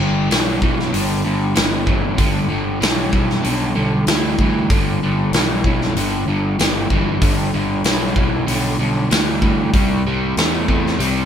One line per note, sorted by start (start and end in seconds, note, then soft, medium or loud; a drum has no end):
0.00 0.27 G1 medium
0.00 0.28 G2 medium
0.00 0.28 D3 medium
0.30 0.59 B1 medium
0.30 0.59 G2 medium
0.30 0.59 E3 medium
0.30 snare loud
0.30 open hi-hat medium
0.62 0.90 B1 medium
0.62 0.90 G2 medium
0.62 0.91 E3 medium
0.62 kick medium
0.80 snare soft
0.92 1.22 G1 medium
0.92 1.21 G2 medium
0.92 1.21 D3 medium
0.92 open hi-hat medium
1.24 1.54 G1 medium
1.24 1.53 G2 medium
1.24 1.53 D3 medium
1.55 1.85 G1 medium
1.55 1.84 G2 medium
1.55 1.84 E3 medium
1.55 snare loud
1.55 open hi-hat medium
1.87 2.16 G1 medium
1.87 2.15 G2 medium
1.87 2.16 E3 medium
1.87 kick medium
2.17 2.47 G1 medium
2.17 2.46 G2 medium
2.17 2.47 D3 medium
2.17 kick medium
2.17 open hi-hat medium
2.48 2.79 G1 medium
2.48 2.78 G2 medium
2.48 2.78 D3 medium
2.81 3.10 B1 medium
2.81 3.09 G2 medium
2.81 3.09 E3 medium
2.81 snare loud
2.81 open hi-hat soft
3.11 3.42 B1 medium
3.11 3.40 G2 medium
3.11 3.41 E3 medium
3.11 kick medium
3.30 snare soft
3.43 3.73 B1 medium
3.43 3.72 G2 medium
3.43 3.72 D3 medium
3.43 open hi-hat soft
3.75 4.04 B1 medium
3.75 4.04 G2 medium
3.75 4.04 D3 medium
4.07 4.35 D2 medium
4.07 4.35 G2 medium
4.07 4.36 E3 medium
4.07 snare loud
4.07 open hi-hat soft
4.39 4.67 D2 medium
4.39 4.67 G2 medium
4.39 4.68 E3 medium
4.39 kick medium
4.70 5.29 G1 medium
4.70 4.99 G2 medium
4.70 4.99 D3 medium
4.70 kick loud
4.70 open hi-hat soft
5.03 5.30 G2 medium
5.03 5.30 D3 medium
5.32 5.61 B1 medium
5.32 5.62 G2 medium
5.32 5.62 E3 medium
5.32 snare loud
5.32 open hi-hat soft
5.64 5.93 B1 medium
5.64 5.93 G2 medium
5.64 5.94 E3 medium
5.64 kick medium
5.82 snare soft
5.95 6.24 G1 medium
5.95 6.25 G2 medium
5.95 6.25 D3 medium
5.95 open hi-hat medium
6.26 6.55 G1 medium
6.26 6.56 G2 medium
6.26 6.56 D3 medium
6.59 6.87 G1 medium
6.59 6.87 G2 medium
6.59 6.87 E3 medium
6.59 snare loud
6.59 open hi-hat medium
6.90 7.19 G1 medium
6.90 7.19 G2 medium
6.90 7.19 E3 medium
6.90 kick medium
7.21 7.50 G1 medium
7.21 7.50 G2 medium
7.21 7.50 D3 medium
7.21 kick loud
7.21 open hi-hat medium
7.53 7.82 G1 medium
7.53 7.82 G2 medium
7.53 7.82 D3 medium
7.84 8.13 B1 medium
7.84 8.13 G2 medium
7.84 8.13 E3 medium
7.84 snare medium
7.84 open hi-hat medium
8.16 8.45 B1 medium
8.16 8.44 G2 medium
8.16 8.44 E3 medium
8.16 kick medium
8.47 8.76 B1 loud
8.47 8.75 G2 medium
8.47 8.76 D3 medium
8.47 open hi-hat medium
8.79 9.07 B1 medium
8.79 9.07 G2 medium
8.79 9.08 D3 medium
9.11 9.40 D2 medium
9.11 9.39 G2 medium
9.11 9.39 E3 loud
9.11 snare loud
9.11 open hi-hat medium
9.42 9.70 D2 medium
9.42 9.70 G2 medium
9.42 9.71 E3 medium
9.42 kick medium
9.73 10.32 C2 medium
9.73 10.02 C3 medium
9.73 10.02 G3 medium
9.73 kick loud
9.73 open hi-hat soft
10.07 10.34 C3 medium
10.07 10.34 G3 medium
10.37 10.65 E2 medium
10.37 10.66 C3 medium
10.37 10.66 A3 medium
10.37 snare loud
10.37 open hi-hat soft
10.68 10.97 E2 medium
10.68 10.97 C3 medium
10.68 10.97 A3 medium
10.68 kick medium
10.87 snare soft
10.99 11.25 C2 medium
10.99 11.25 C3 medium
10.99 11.25 G3 medium
10.99 open hi-hat medium